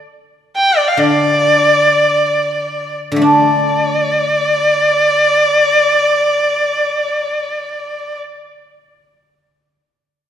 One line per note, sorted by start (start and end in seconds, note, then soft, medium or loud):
0.00 0.17 D4 soft
0.00 0.93 F4 soft
0.00 1.73 A4 soft
0.57 0.79 G5 medium
0.77 0.89 D5 medium
0.88 1.01 F5 medium
0.97 3.10 D3 soft
0.97 2.95 D5 medium
3.12 9.75 D3 soft
3.16 8.82 A3 soft
3.22 8.21 D4 soft
3.22 8.19 D5 medium